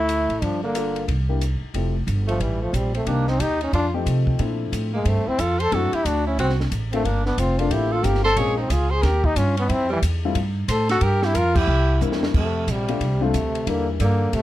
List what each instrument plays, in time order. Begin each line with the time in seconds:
Already playing: upright bass D2, tenor saxophone A3, trombone E4
0.09 hi-hat pedal, ride
0.29 upright bass A1, ride
0.42 upright bass G1, tenor saxophone F3, trombone D4, kick, ride
0.63 tenor saxophone D3, trombone A#3
0.75 grand piano A#3 D4 F4 A4, hi-hat pedal, ride
0.96 ride
1.08 upright bass C2, kick, ride
1.29 grand piano A#3 D4 E4 G4
1.41 hi-hat pedal, ride
1.61 muted upright bass stroke
1.74 upright bass F1, grand piano F3 A3 C4 E4 G4, kick, ride
2.07 upright bass G1, kick, hi-hat pedal, ride
2.27 trombone F3, tenor saxophone A3, ride
2.40 upright bass A1, trombone E3, tenor saxophone G3, kick, ride
2.61 trombone F3, tenor saxophone A3
2.73 upright bass A#1, trombone G3, tenor saxophone C4, kick, hi-hat pedal, ride
2.94 trombone A3, tenor saxophone C4, ride
3.06 upright bass C2, grand piano D#3 A#3 C4 D4 G4, trombone A#3, tenor saxophone D4, kick, ride
3.27 trombone C4, tenor saxophone D#4, snare
3.40 upright bass D#2, trombone D#4, tenor saxophone G4, kick, hi-hat pedal, ride
3.61 trombone C#4, tenor saxophone D#4, ride
3.73 upright bass F2, trombone D4, tenor saxophone F4, kick, ride
3.94 grand piano F3 A3 C4 D#4 G4
4.06 upright bass C3, kick, hi-hat pedal, ride
4.27 kick
4.39 upright bass A#2, grand piano F3 A3 C4 D4 E4, kick, ride
4.72 upright bass A2, kick, hi-hat pedal, ride
4.93 trombone G#3, tenor saxophone A#3
5.05 upright bass G2, trombone A3, tenor saxophone C4, kick, ride
5.16 upright bass F2
5.26 upright bass D2, trombone C4, tenor saxophone E4
5.39 upright bass F2, trombone F4, tenor saxophone A4, kick, hi-hat pedal, ride
5.59 trombone A4, tenor saxophone C5, ride
5.72 upright bass F#2, grand piano F#3 A3 C4 D4 E4, trombone F#4, tenor saxophone A4, kick, ride
5.93 trombone E4, tenor saxophone G4, muted upright bass stroke, ride
6.05 upright bass D2, trombone D4, tenor saxophone F#4, kick, hi-hat pedal, ride
6.27 trombone C#4, tenor saxophone E4
6.38 upright bass C2, trombone C4, tenor saxophone F#4, kick, ride
6.50 snare
6.60 snare
6.71 upright bass A1, kick, hi-hat pedal, ride
6.92 grand piano A3 A#3 C4 D4 F4, trombone A3, tenor saxophone C4, ride
7.05 upright bass G1, trombone A#3, tenor saxophone D4, kick, ride
7.26 trombone B3, tenor saxophone D4, snare
7.38 upright bass F1, trombone C4, tenor saxophone F4, kick, hi-hat pedal, ride
7.58 grand piano A3 A#3 C4 D4 F4, trombone D4, tenor saxophone F4, ride
7.71 upright bass A1, trombone E4, tenor saxophone G4, kick, ride
7.92 trombone F4, tenor saxophone A4
8.03 upright bass G1, grand piano A3 A#3 C4 D4 F4, trombone G4, tenor saxophone A#4, kick, hi-hat pedal, ride
8.15 snare
8.24 trombone A4, tenor saxophone C5, snare
8.36 upright bass A#1, grand piano G#3 A#3 C4 C#4 F4, trombone G#4, tenor saxophone C#5, kick, ride
8.57 trombone C4, tenor saxophone D#4
8.70 upright bass C#2, trombone F4, tenor saxophone G#4, kick, hi-hat pedal, ride
8.90 trombone G#4, tenor saxophone C5
9.02 upright bass D#2, trombone G4, tenor saxophone A#4, kick, snare, ride
9.24 trombone D#4, tenor saxophone G4, kick
9.36 upright bass G2, trombone C#4, tenor saxophone F4, kick, hi-hat pedal, ride
9.57 trombone B3, tenor saxophone C#4, ride
9.68 upright bass F2, trombone C4, tenor saxophone E4, kick, ride
9.89 trombone E3, tenor saxophone G3
10.02 upright bass E2, kick, hi-hat pedal, ride
10.25 grand piano G3 A3 C4 E4 F4
10.35 upright bass G2, kick, ride
10.68 upright bass A2, trombone A4, tenor saxophone C5, kick, hi-hat pedal, ride
10.89 trombone F#4, tenor saxophone A4, snare, ride
11.01 upright bass G2, trombone G4, tenor saxophone A#4, kick, ride
11.22 trombone E4, tenor saxophone G4, snare
11.34 upright bass F2, trombone F4, tenor saxophone A#4, kick, hi-hat pedal, ride
11.55 trombone E4, tenor saxophone G4, kick, crash
11.67 upright bass C2
12.01 upright bass E2, grand piano G3 A#3 C4 D4 E4, hi-hat pedal
12.12 snare
12.23 snare
12.34 upright bass F2, tenor saxophone C3, trombone A3, kick, crash
12.67 upright bass A#1, tenor saxophone C3, trombone G3, kick, hi-hat pedal, ride
12.88 grand piano G3 A3 C4 D4 F4, ride
13.00 upright bass C2, kick, ride
13.21 tenor saxophone C3, grand piano G3 A3 C4 D4 F4, trombone A3
13.34 upright bass D2, kick, hi-hat pedal, ride
13.55 ride
13.67 upright bass E2, tenor saxophone D3, grand piano E3 G3 A#3 D4 E4, trombone A#3, kick, ride
14.00 upright bass G2, tenor saxophone D3, trombone A#3, kick, hi-hat pedal, ride
14.33 upright bass A2, tenor saxophone C3, trombone A3, kick, ride